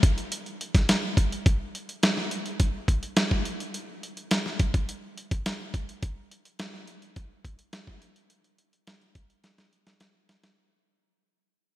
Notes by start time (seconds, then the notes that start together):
0.03 kick, closed hi-hat
0.18 closed hi-hat
0.32 closed hi-hat
0.46 closed hi-hat
0.61 closed hi-hat
0.75 kick, snare, closed hi-hat
0.89 snare, closed hi-hat
1.17 kick, closed hi-hat
1.32 closed hi-hat
1.46 kick, closed hi-hat
1.75 closed hi-hat
1.89 closed hi-hat
2.03 snare, closed hi-hat
2.17 snare
2.31 closed hi-hat
2.46 closed hi-hat
2.60 kick, closed hi-hat
2.88 kick, closed hi-hat
3.03 closed hi-hat
3.16 snare, closed hi-hat
3.31 kick
3.45 closed hi-hat
3.60 closed hi-hat
3.74 closed hi-hat
4.03 closed hi-hat
4.17 closed hi-hat
4.31 snare, closed hi-hat
4.46 snare
4.59 kick, closed hi-hat
4.74 kick, closed hi-hat
4.89 closed hi-hat
5.18 closed hi-hat
5.31 kick, closed hi-hat
5.46 snare, closed hi-hat
5.74 kick, closed hi-hat
5.89 closed hi-hat
6.03 kick, closed hi-hat
6.31 closed hi-hat
6.45 closed hi-hat
6.59 snare, closed hi-hat
6.74 snare
6.87 closed hi-hat
7.02 closed hi-hat
7.16 kick, closed hi-hat
7.45 kick, closed hi-hat
7.59 closed hi-hat
7.73 snare, closed hi-hat
7.87 kick
8.02 closed hi-hat
8.16 closed hi-hat
8.30 closed hi-hat
8.44 closed hi-hat
8.58 closed hi-hat
8.73 closed hi-hat
8.87 snare, closed hi-hat
9.01 closed hi-hat
9.15 kick, closed hi-hat
9.30 closed hi-hat
9.44 snare, closed hi-hat
9.58 snare, closed hi-hat
9.73 closed hi-hat
9.87 snare, closed hi-hat
10.00 snare, closed hi-hat
10.29 snare, closed hi-hat
10.44 snare, closed hi-hat